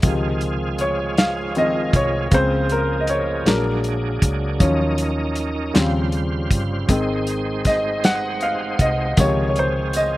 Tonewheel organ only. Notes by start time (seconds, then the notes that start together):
0.04 F3 G#3 F4 G#4
2.31 C#3 F3 A#3 F#4
2.37 G#4
3.45 F#3 A#3 D4 G#4
4.60 D#3 C#4 D#4 A#4
5.74 C#3 G3 F4 C5
6.89 G#3 C4 D#4 B4
6.96 C5
9.17 G#3 E4 G#4
9.24 F4